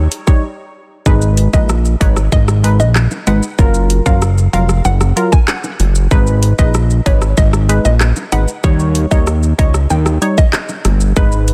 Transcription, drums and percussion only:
0.12 closed hi-hat medium
0.12 shaker medium
0.27 kick loud
0.27 shaker medium
1.06 kick loud
1.06 high bongo medium
1.06 shaker medium
1.22 shaker medium
1.37 closed hi-hat medium
1.37 shaker medium
1.54 kick loud
1.54 shaker medium
1.69 cross-stick loud
1.69 shaker medium
1.85 shaker soft
2.01 kick loud
2.01 closed hi-hat medium
2.01 high bongo medium
2.01 shaker medium
2.17 cross-stick medium
2.17 shaker medium
2.32 kick medium
2.32 high bongo medium
2.32 shaker medium
2.48 cross-stick medium
2.48 shaker medium
2.64 closed hi-hat medium
2.64 shaker medium
2.80 high bongo medium
2.80 shaker medium
2.95 cross-stick loud
2.95 clap loud
2.95 high bongo medium
2.95 shaker medium
3.11 high bongo medium
3.11 shaker medium
3.27 closed hi-hat medium
3.27 low bongo medium
3.27 shaker soft
3.43 shaker medium
3.59 kick loud
3.59 high bongo medium
3.59 shaker medium
3.74 shaker medium
3.90 closed hi-hat medium
3.90 shaker medium
4.06 kick medium
4.06 shaker medium
4.22 cross-stick medium
4.22 shaker medium
4.38 shaker soft
4.53 closed hi-hat medium
4.53 high bongo medium
4.53 shaker medium
4.69 cross-stick medium
4.69 shaker medium
4.85 high bongo medium
4.85 shaker medium
5.01 cross-stick medium
5.01 shaker medium
5.17 closed hi-hat medium
5.17 shaker medium
5.32 kick loud
5.32 high bongo medium
5.32 shaker medium
5.48 cross-stick loud
5.48 clap loud
5.48 high bongo medium
5.48 shaker medium
5.64 high bongo medium
5.64 shaker medium
5.80 closed hi-hat medium
5.80 low bongo medium
5.80 shaker soft
5.95 shaker medium
6.11 kick loud
6.11 high bongo medium
6.11 shaker medium
6.27 shaker medium
6.43 closed hi-hat medium
6.43 shaker medium
6.59 kick loud
6.59 shaker medium
6.74 cross-stick medium
6.74 shaker medium
6.90 shaker soft
7.06 kick medium
7.06 closed hi-hat medium
7.06 high bongo medium
7.06 shaker medium
7.22 cross-stick medium
7.22 shaker medium
7.37 kick loud
7.37 high bongo medium
7.37 shaker medium
7.53 cross-stick medium
7.53 shaker medium
7.69 closed hi-hat medium
7.69 shaker medium
7.85 high bongo medium
7.85 shaker medium
8.01 cross-stick loud
8.01 clap loud
8.01 high bongo medium
8.01 shaker medium
8.16 high bongo medium
8.16 shaker medium
8.32 closed hi-hat medium
8.32 low bongo medium
8.32 shaker soft
8.48 shaker medium
8.64 kick loud
8.64 high bongo medium
8.64 shaker medium
8.79 shaker medium
8.95 closed hi-hat medium
8.95 shaker medium
9.11 kick medium
9.11 shaker medium
9.27 cross-stick loud
9.27 shaker medium
9.43 shaker medium
9.59 kick loud
9.59 closed hi-hat medium
9.59 high bongo medium
9.59 shaker medium
9.74 cross-stick medium
9.74 shaker medium
9.90 high bongo medium
9.90 shaker medium
10.06 cross-stick medium
10.06 shaker medium
10.22 closed hi-hat medium
10.22 shaker medium
10.38 kick loud
10.38 high bongo medium
10.38 shaker medium
10.53 cross-stick loud
10.53 clap loud
10.53 high bongo medium
10.53 shaker medium
10.69 high bongo medium
10.69 shaker medium
10.85 cross-stick medium
10.85 closed hi-hat medium
10.85 low bongo medium
10.85 shaker soft
11.01 shaker medium
11.16 kick loud
11.16 high bongo medium
11.16 shaker medium
11.32 shaker medium
11.48 closed hi-hat medium
11.48 shaker medium

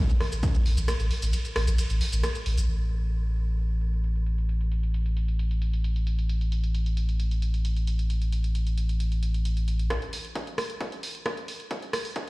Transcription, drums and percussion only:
0.10 closed hi-hat medium
0.10 shaker soft
0.20 cross-stick medium
0.20 open hi-hat loud
0.32 closed hi-hat medium
0.32 shaker medium
0.43 kick loud
0.43 closed hi-hat medium
0.43 ride medium
0.43 shaker medium
0.55 closed hi-hat medium
0.55 shaker soft
0.66 open hi-hat loud
0.77 closed hi-hat soft
0.77 shaker medium
0.88 cross-stick medium
0.88 closed hi-hat medium
0.88 ride medium
0.88 shaker medium
1.00 closed hi-hat medium
1.00 shaker soft
1.11 open hi-hat loud
1.22 open hi-hat medium
1.22 shaker medium
1.33 closed hi-hat medium
1.33 ride medium
1.33 shaker medium
1.45 closed hi-hat medium
1.45 shaker soft
1.56 cross-stick medium
1.56 open hi-hat loud
1.68 closed hi-hat medium
1.68 shaker medium
1.78 closed hi-hat medium
1.78 ride medium
1.78 shaker medium
1.90 closed hi-hat medium
1.90 shaker soft
2.01 open hi-hat loud
2.13 closed hi-hat medium
2.13 shaker medium
2.23 cross-stick medium
2.23 closed hi-hat medium
2.23 ride medium
2.23 shaker medium
2.35 closed hi-hat medium
2.35 shaker soft
2.46 open hi-hat loud
2.58 closed hi-hat medium
2.58 shaker medium
2.69 closed hi-hat medium
2.80 closed hi-hat medium
2.91 closed hi-hat medium
3.03 closed hi-hat medium
3.14 closed hi-hat medium
3.25 closed hi-hat medium
3.36 closed hi-hat medium
3.48 closed hi-hat medium
3.59 closed hi-hat medium
3.70 closed hi-hat medium
3.81 closed hi-hat medium
3.93 closed hi-hat medium
4.04 closed hi-hat medium
4.16 closed hi-hat medium
4.26 closed hi-hat medium
4.38 closed hi-hat medium
4.49 closed hi-hat medium
4.61 closed hi-hat medium
4.72 closed hi-hat medium
4.83 closed hi-hat medium
4.94 closed hi-hat medium
5.06 closed hi-hat medium
5.17 closed hi-hat medium
5.28 closed hi-hat medium
5.39 closed hi-hat medium
5.51 closed hi-hat medium
5.62 closed hi-hat medium
5.73 closed hi-hat medium
5.84 closed hi-hat medium
5.96 closed hi-hat medium
6.07 closed hi-hat medium
6.19 closed hi-hat medium
6.29 closed hi-hat medium
6.41 closed hi-hat medium
6.52 closed hi-hat medium
6.64 closed hi-hat medium
6.75 closed hi-hat medium
6.86 closed hi-hat medium
6.97 closed hi-hat medium
7.09 closed hi-hat medium
7.20 closed hi-hat medium
7.31 closed hi-hat medium
7.42 closed hi-hat medium
7.54 closed hi-hat medium
7.65 closed hi-hat medium
7.76 closed hi-hat medium
7.87 closed hi-hat medium
7.99 closed hi-hat medium
8.10 closed hi-hat medium
8.22 closed hi-hat medium
8.32 closed hi-hat medium
8.44 closed hi-hat soft
8.55 closed hi-hat medium
8.67 closed hi-hat soft
8.78 closed hi-hat medium
8.89 closed hi-hat medium
9.00 closed hi-hat medium
9.12 closed hi-hat medium
9.23 closed hi-hat medium
9.34 closed hi-hat soft
9.45 closed hi-hat medium
9.57 closed hi-hat soft
9.68 closed hi-hat medium
9.79 closed hi-hat soft
9.90 kick loud
9.90 cross-stick medium
9.90 closed hi-hat medium
10.02 closed hi-hat medium
10.13 open hi-hat loud
10.25 closed hi-hat medium
10.35 kick loud
10.35 closed hi-hat medium
10.47 closed hi-hat medium
10.58 cross-stick medium
10.58 open hi-hat loud
10.70 closed hi-hat medium
10.81 kick loud
10.81 closed hi-hat medium
10.92 closed hi-hat medium
11.03 open hi-hat loud
11.15 closed hi-hat medium
11.26 kick loud
11.26 cross-stick medium
11.26 closed hi-hat medium
11.37 closed hi-hat medium
11.48 open hi-hat loud
11.60 closed hi-hat medium
11.71 kick loud
11.71 closed hi-hat medium
11.82 closed hi-hat medium
11.93 cross-stick medium
11.93 open hi-hat loud
12.05 open hi-hat medium
12.16 kick loud
12.16 closed hi-hat medium

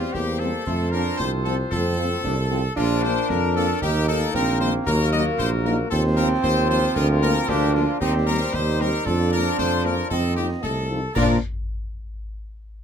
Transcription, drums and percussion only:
0.14 concert bass drum medium
0.14 snare medium
0.28 snare medium
0.41 snare medium
0.67 concert bass drum loud
0.67 snare medium
0.67 crash soft
0.93 snare medium
1.20 concert bass drum medium
1.20 snare medium
1.46 snare medium
1.72 concert bass drum medium
1.72 snare medium
2.25 concert bass drum medium
2.25 snare medium
2.77 concert bass drum loud
2.77 snare medium
2.77 crash medium
3.03 snare medium
3.29 concert bass drum medium
3.29 snare medium
3.56 snare medium
3.82 concert bass drum medium
3.82 snare medium
4.34 concert bass drum medium
4.34 snare medium
4.47 snare medium
4.61 snare medium
4.87 concert bass drum loud
4.87 snare medium
4.87 crash soft
5.13 snare medium
5.39 concert bass drum medium
5.39 snare medium
5.65 snare medium
5.92 concert bass drum medium
5.92 snare medium
6.44 concert bass drum medium
6.44 snare medium
6.57 snare medium
6.70 snare medium
6.96 concert bass drum medium
6.96 snare medium
6.96 crash soft
7.22 snare medium
7.48 concert bass drum loud
7.48 snare medium
7.75 snare medium
8.01 concert bass drum loud
8.01 snare medium
8.54 concert bass drum medium
8.54 snare medium
8.67 snare medium
8.80 snare medium
9.06 concert bass drum loud
9.06 snare medium
9.06 crash soft
9.32 snare medium
9.58 concert bass drum medium
9.58 snare medium
9.85 snare medium
10.11 concert bass drum medium
10.11 snare medium
10.63 concert bass drum medium
10.63 snare medium
11.16 concert bass drum loud
11.16 snare loud
11.16 crash medium

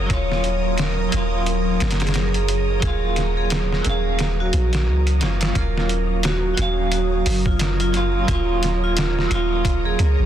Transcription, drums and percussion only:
0.10 kick loud
0.10 closed hi-hat medium
0.32 snare soft
0.44 closed hi-hat medium
0.78 snare loud
0.78 closed hi-hat medium
1.12 closed hi-hat medium
1.46 closed hi-hat medium
1.80 snare medium
1.80 closed hi-hat medium
1.91 snare medium
1.91 closed hi-hat medium
2.00 snare medium
2.00 closed hi-hat medium
2.07 snare medium
2.07 closed hi-hat medium
2.14 snare loud
2.14 closed hi-hat medium
2.34 closed hi-hat soft
2.48 closed hi-hat medium
2.82 kick loud
2.82 closed hi-hat medium
3.16 snare soft
3.16 closed hi-hat medium
3.50 snare loud
3.50 closed hi-hat medium
3.72 snare soft
3.85 closed hi-hat medium
4.19 snare loud
4.19 closed hi-hat medium
4.53 closed hi-hat medium
4.73 snare loud
4.73 closed hi-hat medium
5.07 closed hi-hat medium
5.21 snare loud
5.21 closed hi-hat medium
5.41 snare loud
5.41 closed hi-hat medium
5.55 kick loud
5.55 closed hi-hat medium
5.77 snare medium
5.89 closed hi-hat medium
6.23 snare loud
6.23 closed hi-hat medium
6.57 closed hi-hat medium
6.92 closed hi-hat medium
7.26 open hi-hat medium
7.46 kick loud
7.59 snare loud
7.59 closed hi-hat medium
7.80 closed hi-hat soft
7.94 closed hi-hat medium
8.28 kick loud
8.28 closed hi-hat medium
8.63 snare soft
8.63 closed hi-hat medium
8.97 snare loud
8.97 closed hi-hat medium
9.19 snare soft
9.31 closed hi-hat medium
9.65 kick loud
9.65 closed hi-hat medium
9.99 closed hi-hat medium

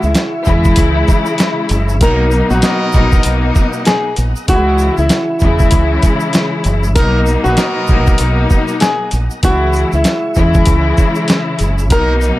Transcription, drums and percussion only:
0.03 shaker soft
0.15 snare loud
0.15 closed hi-hat medium
0.15 shaker medium
0.45 shaker medium
0.47 kick medium
0.47 shaker medium
0.65 kick medium
0.65 shaker medium
0.76 kick loud
0.76 closed hi-hat loud
0.76 shaker medium
1.08 kick loud
1.08 shaker medium
1.26 shaker soft
1.38 snare loud
1.38 closed hi-hat medium
1.38 shaker medium
1.69 closed hi-hat medium
1.69 shaker soft
1.71 shaker soft
1.89 shaker soft
2.01 kick loud
2.01 closed hi-hat loud
2.01 shaker medium
2.31 shaker medium
2.33 shaker soft
2.50 shaker soft
2.62 snare loud
2.62 closed hi-hat medium
2.62 shaker medium
2.92 shaker medium
2.94 kick medium
2.94 shaker medium
3.12 kick medium
3.12 shaker medium
3.23 closed hi-hat loud
3.23 shaker medium
3.55 kick loud
3.55 shaker medium
3.73 shaker soft
3.85 snare loud
3.85 closed hi-hat medium
3.85 shaker medium
4.16 closed hi-hat medium
4.16 shaker soft
4.18 shaker soft
4.36 shaker soft
4.48 kick loud
4.48 closed hi-hat loud
4.48 shaker medium
4.78 shaker medium
4.81 shaker medium
4.97 shaker soft
5.09 snare loud
5.09 closed hi-hat medium
5.09 shaker medium
5.40 shaker medium
5.42 kick medium
5.42 shaker medium
5.59 kick medium
5.59 shaker medium
5.71 kick loud
5.71 closed hi-hat loud
5.71 shaker medium
6.02 kick loud
6.02 closed hi-hat medium
6.02 shaker medium
6.20 shaker medium
6.33 snare loud
6.33 closed hi-hat medium
6.33 shaker medium
6.64 closed hi-hat soft
6.64 shaker medium
6.66 shaker soft
6.83 shaker soft
6.96 kick loud
6.96 closed hi-hat loud
6.96 shaker medium
7.26 shaker medium
7.28 shaker soft
7.45 shaker soft
7.57 snare loud
7.57 closed hi-hat medium
7.57 shaker medium
7.87 shaker medium
7.89 kick medium
7.89 shaker medium
8.07 kick medium
8.07 shaker medium
8.18 closed hi-hat loud
8.18 shaker medium
8.50 kick loud
8.50 shaker medium
8.68 shaker medium
8.80 snare loud
8.80 closed hi-hat medium
8.80 shaker medium
9.11 closed hi-hat soft
9.11 shaker medium
9.13 shaker soft
9.31 shaker soft
9.43 kick loud
9.43 closed hi-hat loud
9.43 shaker medium
9.73 shaker medium
9.76 shaker soft
9.92 shaker soft
10.04 snare loud
10.04 closed hi-hat medium
10.04 shaker medium
10.35 shaker medium
10.37 kick medium
10.37 shaker medium
10.54 kick medium
10.54 shaker medium
10.66 kick loud
10.66 closed hi-hat loud
10.66 shaker medium
10.97 kick loud
10.97 shaker medium
11.15 shaker medium
11.28 snare loud
11.28 closed hi-hat medium
11.28 shaker medium
11.59 closed hi-hat medium
11.59 shaker medium
11.61 shaker soft
11.78 shaker medium
11.90 kick loud
11.90 closed hi-hat loud
11.90 shaker medium
12.21 shaker medium
12.23 shaker soft

